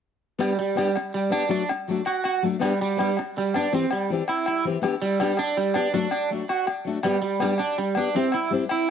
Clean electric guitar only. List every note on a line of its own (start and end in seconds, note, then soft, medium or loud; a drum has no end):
0.40 0.58 G3 medium
0.59 0.76 G3 medium
0.78 0.95 G3 medium
0.97 muted clean electric guitar stroke medium
1.14 1.32 G3 medium
1.32 1.50 D4 medium
1.51 1.68 D4 medium
1.71 muted clean electric guitar stroke medium
2.07 2.24 F#4 medium
2.25 2.42 F#4 medium
2.62 2.79 G3 medium
2.81 2.98 G3 medium
3.00 3.17 G3 medium
3.19 muted clean electric guitar stroke medium
3.38 3.54 G3 medium
3.56 3.72 D4 medium
3.74 3.91 C4 medium
3.92 4.09 G3 medium
4.29 4.46 E4 medium
4.48 4.64 E4 medium
4.84 muted clean electric guitar stroke medium
5.02 5.19 G3 medium
5.21 5.38 G3 medium
5.39 5.56 D4 medium
5.57 5.74 G3 medium
5.75 5.92 D4 medium
5.94 6.11 D4 medium
6.12 6.29 D4 medium
6.50 6.66 F#4 medium
6.67 muted clean electric guitar stroke medium
7.04 7.20 G3 medium
7.22 7.39 G3 medium
7.42 7.59 G3 medium
7.59 7.77 D4 medium
7.78 7.95 G3 medium
7.97 8.14 D4 medium
8.16 8.33 C4 medium
8.34 8.51 E4 medium
8.71 8.88 E4 medium